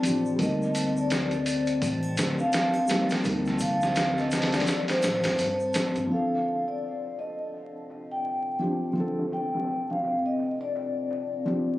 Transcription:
Already playing: ambient pad C4 A5, vibraphone D5
0.02 upright bass A1, felt piano F3 C4 D4 G4, open hi-hat, shaker
0.26 shaker
0.36 upright bass D2, felt piano G3 A#3, kick, open hi-hat
0.41 felt piano D#4 A#4, vibraphone D#5, shaker
0.62 shaker
0.75 open hi-hat, triangle, shaker
0.97 vibraphone D5, shaker
1.10 snare, open hi-hat, shaker
1.31 closed hi-hat, shaker
1.46 vibraphone D5, open hi-hat, shaker
1.66 closed hi-hat, shaker
1.82 upright bass A1, kick, open hi-hat, shaker
2.03 triangle, shaker
2.17 upright bass D2, snare, open hi-hat, shaker
2.39 vibraphone F5, shaker
2.53 snare, open hi-hat, shaker
2.74 triangle, shaker
2.88 felt piano G3 A#3 D#4 G4, snare, open hi-hat, shaker
3.10 snare, open hi-hat, shaker
3.23 upright bass D2, felt piano G3 A#3, kick, open hi-hat, shaker
3.27 felt piano D#4 A#4
3.46 snare, shaker
3.59 vibraphone F5, kick, open hi-hat, triangle, shaker
3.81 snare, shaker
3.95 snare, open hi-hat, shaker
4.18 vibraphone D#5, snare, shaker
4.31 snare, open hi-hat, shaker
4.42 snare, open hi-hat
4.52 vibraphone D5, snare, open hi-hat, shaker
4.60 snare, open hi-hat
4.67 snare, open hi-hat, shaker
4.88 vibraphone C5, snare, open hi-hat, shaker
5.02 upright bass A1, snare, open hi-hat, triangle, shaker
5.24 upright bass F2, snare, open hi-hat, triangle, shaker
5.39 upright bass G2, open hi-hat, shaker
5.60 shaker
5.74 upright bass A1, snare, open hi-hat, shaker
5.96 upright bass G2, closed hi-hat, shaker
6.07 felt piano F3 C4, open hi-hat
6.11 felt piano D3 A4, ambient pad C4 A5, vibraphone F5
6.46 open hi-hat
6.68 vibraphone D5
6.82 open hi-hat
7.03 closed hi-hat
7.18 vibraphone D#5, open hi-hat
7.39 closed hi-hat
7.54 open hi-hat
7.90 open hi-hat
8.11 vibraphone G5
8.26 open hi-hat
8.59 felt piano F3 C4 D4 G4, open hi-hat
8.93 felt piano F3 C4, open hi-hat
8.98 felt piano D3 A4
9.19 snare
9.32 vibraphone G5, open hi-hat
9.54 snare
9.68 open hi-hat
9.90 vibraphone F5, snare
10.04 open hi-hat
10.26 vibraphone D#5
10.39 open hi-hat
10.61 vibraphone D5
10.75 open hi-hat
11.11 open hi-hat
11.45 felt piano F3 C4 D4 G4, open hi-hat

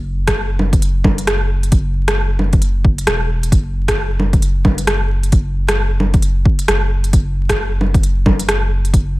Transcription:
Already playing: sub bass F#1
0.28 kick, cross-stick, closed hi-hat
0.59 low bongo
0.73 kick, closed hi-hat
0.82 closed hi-hat
1.04 kick, low bongo
1.18 closed hi-hat
1.27 cross-stick, closed hi-hat
1.63 closed hi-hat
1.72 sub bass F#1, kick, closed hi-hat
2.08 cross-stick, closed hi-hat
2.39 low bongo
2.53 kick, closed hi-hat
2.62 closed hi-hat
2.84 sub bass F#1, kick
2.98 closed hi-hat
3.07 sub bass E1, cross-stick, closed hi-hat
3.43 closed hi-hat
3.52 sub bass F#1, kick, closed hi-hat
3.88 kick, cross-stick, closed hi-hat
4.20 low bongo
4.33 kick, closed hi-hat
4.42 closed hi-hat
4.65 kick, low bongo
4.78 closed hi-hat
4.87 cross-stick, closed hi-hat
5.23 closed hi-hat
5.32 sub bass F#1, kick, closed hi-hat
5.69 cross-stick, closed hi-hat
6.00 low bongo
6.14 kick, closed hi-hat
6.22 closed hi-hat
6.45 kick
6.59 closed hi-hat
6.68 sub bass F#1, cross-stick, closed hi-hat
7.04 closed hi-hat
7.13 sub bass F#1, kick, closed hi-hat
7.49 kick, cross-stick, closed hi-hat
7.81 low bongo
7.94 kick, closed hi-hat
8.03 closed hi-hat
8.26 kick, low bongo
8.39 closed hi-hat
8.49 cross-stick, closed hi-hat
8.85 closed hi-hat
8.94 sub bass F#1, kick, closed hi-hat

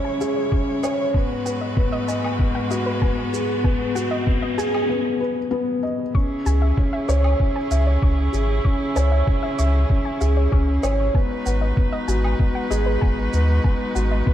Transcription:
Already playing: string quartet C#3 G#3 E4 C#5, felt piano C#4 G#4 C#5 G#5, riser
0.05 synth arpeggio sound G#5
0.21 felt piano G#4, synth arpeggio sound E5, shaker
0.36 synth arpeggio sound C#5
0.52 felt piano C#4, synth arpeggio sound C#6, kick
0.83 felt piano C#5, low woodblock, shaker
1.14 string quartet G#2 G#3 F#4 B4, felt piano B3, synth arpeggio sound G#5, kick
1.46 felt piano B4, synth arpeggio sound F#5, shaker
1.61 synth arpeggio sound D#5
1.76 felt piano B3, kick
1.92 synth arpeggio sound D#5
2.08 felt piano D#5, synth arpeggio sound G#5, shaker
2.24 low woodblock
2.39 felt piano B3, kick
2.55 synth arpeggio sound F#5
2.70 felt piano F#4, synth arpeggio sound D#5, shaker
2.86 synth arpeggio sound B4
3.02 felt piano B3, synth arpeggio sound G#5, kick
3.33 felt piano G#4, shaker
3.64 felt piano B3, synth arpeggio sound G#5, kick
3.95 felt piano F#4, synth arpeggio sound F#5, shaker
4.11 synth arpeggio sound D#5
4.26 felt piano B3, kick
4.42 synth arpeggio sound D#5
4.58 felt piano G#4, synth arpeggio sound G#5, shaker
4.74 low woodblock
4.89 felt piano B3
5.20 felt piano B4
5.51 felt piano B3
5.83 felt piano D#5
6.14 string quartet C#3 C#4 E4 G#4, felt piano C#4, synth arpeggio sound C#6, kick
6.46 sub bass C#2, felt piano G#4, synth arpeggio sound G#5, shaker
6.62 synth arpeggio sound E5
6.77 felt piano C#4, kick
6.93 synth arpeggio sound E5
7.08 sub bass C#2, felt piano C#5, synth arpeggio sound C#6, shaker
7.24 low woodblock
7.40 felt piano C#4, kick
7.56 synth arpeggio sound G#5
7.71 sub bass C#2, felt piano E5, synth arpeggio sound E5, shaker
7.87 synth arpeggio sound C#5
8.02 sub bass C#2, felt piano C#4, synth arpeggio sound C#6, kick
8.33 sub bass G#1, felt piano G#4, shaker
8.65 felt piano C#4, synth arpeggio sound C#6, kick
8.96 sub bass C#2, felt piano C#5, synth arpeggio sound G#5, shaker
9.12 synth arpeggio sound E5
9.27 felt piano C#4, kick
9.43 synth arpeggio sound E5
9.58 sub bass C#2, felt piano E5, synth arpeggio sound C#6, shaker
9.89 felt piano C#4, kick
10.05 synth arpeggio sound G#5
10.21 sub bass C#2, felt piano G#4, synth arpeggio sound E5, shaker
10.37 synth arpeggio sound C#5
10.52 sub bass C#2, felt piano C#4, synth arpeggio sound C#6, kick
10.83 sub bass G#1, felt piano C#5, low woodblock, shaker
11.14 string quartet G#3 D#4 F#4 B4, felt piano B3, synth arpeggio sound G#5, kick
11.46 sub bass G#1, felt piano B4, synth arpeggio sound F#5, shaker
11.61 synth arpeggio sound D#5
11.77 felt piano B3, kick
11.92 synth arpeggio sound D#5
12.08 sub bass G#1, felt piano F#4, synth arpeggio sound G#5, shaker
12.24 low woodblock
12.39 felt piano B3, kick
12.55 synth arpeggio sound F#5
12.70 sub bass G#1, felt piano G#4, synth arpeggio sound D#5, shaker
12.86 synth arpeggio sound B4
13.01 sub bass G#1, felt piano B3, synth arpeggio sound G#5, kick
13.33 sub bass D#2, felt piano B4, shaker
13.64 felt piano B3, synth arpeggio sound G#5, kick
13.95 sub bass G#1, felt piano F#4, synth arpeggio sound F#5, shaker
14.11 synth arpeggio sound D#5
14.26 felt piano B3, kick

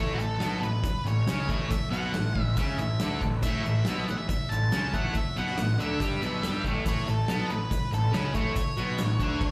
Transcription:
Already playing: picked electric bass A1, distorted electric guitar A2 A3, lead electric guitar C#5
0.14 lead electric guitar F#4
0.18 picked electric bass A1, distorted electric guitar A2, lead electric guitar A4, shaker
0.39 picked electric bass B1, distorted electric guitar B2 B3, snare, open hi-hat, shaker
0.61 picked electric bass A1, distorted electric guitar A2, lead electric guitar B4, shaker
0.83 muted picked electric bass stroke, muted distorted electric guitar stroke, kick, open hi-hat, shaker
1.05 picked electric bass A1, distorted electric guitar A2, lead electric guitar C#5, shaker
1.27 picked electric bass C#2, distorted electric guitar C#3 C#4, snare, open hi-hat, shaker
1.49 picked electric bass A1, distorted electric guitar A2 A3, kick, shaker
1.70 lead electric guitar E5, muted distorted electric guitar stroke, muted picked electric bass stroke, kick, open hi-hat, shaker
1.91 picked electric bass B1, distorted electric guitar B2 B3, lead electric guitar F#5, shaker
2.14 picked electric bass A1, distorted electric guitar A2, snare, open hi-hat, shaker
2.35 picked electric bass A1, distorted electric guitar A2, kick
2.42 lead electric guitar E5
2.57 picked electric bass C#2, distorted electric guitar C#3 C#4, lead electric guitar E5, kick, open hi-hat, shaker
2.78 picked electric bass A1, distorted electric guitar A2, lead electric guitar E5, shaker
3.00 picked electric bass D2, distorted electric guitar D3 D4, snare, open hi-hat, shaker
3.21 picked electric bass A1, distorted electric guitar A2, kick, shaker
3.43 picked electric bass A1, distorted electric guitar A2 A3, lead electric guitar E5, kick, crash, shaker
3.63 picked electric bass A1, distorted electric guitar A2, lead electric guitar E5, shaker
3.85 picked electric bass B1, distorted electric guitar B2 B3, snare, open hi-hat, shaker
4.08 picked electric bass A1, distorted electric guitar A2, lead electric guitar F#5, shaker
4.18 lead electric guitar E5
4.29 lead electric guitar E5, muted picked electric bass stroke, muted distorted electric guitar stroke, kick, open hi-hat, shaker
4.49 picked electric bass A1, distorted electric guitar A2, lead electric guitar A5, shaker
4.72 picked electric bass C#2, distorted electric guitar C#3 C#4, snare, open hi-hat, shaker
4.93 picked electric bass A1, distorted electric guitar A2 A3, lead electric guitar F#5, kick, shaker
5.14 lead electric guitar E5, muted distorted electric guitar stroke, muted picked electric bass stroke, kick, open hi-hat, shaker
5.36 picked electric bass B1, distorted electric guitar B2 B3, lead electric guitar F#5, shaker
5.47 snare
5.58 picked electric bass A1, distorted electric guitar A2, snare, open hi-hat, shaker
5.78 picked electric bass D2, distorted electric guitar D3 D4, lead electric guitar E5, shaker
6.00 picked electric bass G2, distorted electric guitar G3 G4, kick, open hi-hat, shaker
6.20 picked electric bass B1, distorted electric guitar B2 B3, shaker
6.43 picked electric bass G2, distorted electric guitar G3 G4, snare, open hi-hat, shaker
6.64 picked electric bass A1, distorted electric guitar A2 A3, kick, shaker
6.85 picked electric bass A1, distorted electric guitar A2 A3, lead electric guitar C#5, kick, open hi-hat, shaker
7.06 picked electric bass A1, distorted electric guitar A2, lead electric guitar A4, shaker
7.28 picked electric bass B1, distorted electric guitar B2 B3, snare, open hi-hat, shaker
7.48 picked electric bass A1, distorted electric guitar A2, lead electric guitar B4, shaker
7.70 muted distorted electric guitar stroke, muted picked electric bass stroke, kick, open hi-hat, shaker
7.91 picked electric bass A1, distorted electric guitar A2, lead electric guitar A4, shaker
8.12 picked electric bass C#2, distorted electric guitar C#3 C#4, lead electric guitar B4, snare, open hi-hat, shaker
8.33 picked electric bass A1, distorted electric guitar A2 A3, lead electric guitar C#5, kick, shaker
8.56 muted distorted electric guitar stroke, muted picked electric bass stroke, kick, open hi-hat, shaker
8.77 picked electric bass B1, distorted electric guitar B2 B3, shaker
8.98 picked electric bass A1, distorted electric guitar A2, snare, open hi-hat, shaker
9.19 picked electric bass D2, distorted electric guitar D3 D4, kick, shaker
9.41 kick, crash

